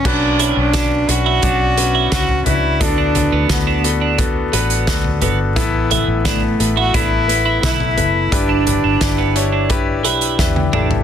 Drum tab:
CC |x---------------|----------------|----------------|----------------|
HH |--x-x-x-x-x-x-x-|x-x-x-x-x-xxx-x-|x-x-x-x-x-x-x-x-|x-x-x-x-x-xx----|
SD |----o-------o---|----o-------o---|----o-------o---|----o-------o---|
T1 |----------------|----------------|----------------|-------------o--|
T2 |----------------|----------------|----------------|--------------o-|
FT |-------------oo-|--o----------oo-|--o----------oo-|--o------------o|
BD |o---o---o---o---|o---o---o---o---|o---o---o---o---|o---o---o---o---|